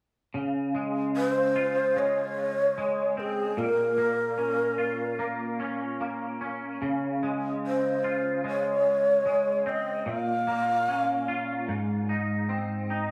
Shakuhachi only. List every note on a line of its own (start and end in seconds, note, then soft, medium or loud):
1.17 2.00 C5 medium
1.98 3.21 C#5 medium
3.19 3.60 G#4 medium
3.59 5.21 A#4 medium
7.67 8.42 C5 medium
8.47 9.70 C#5 medium
9.69 10.11 D#5 medium
10.09 11.70 F5 medium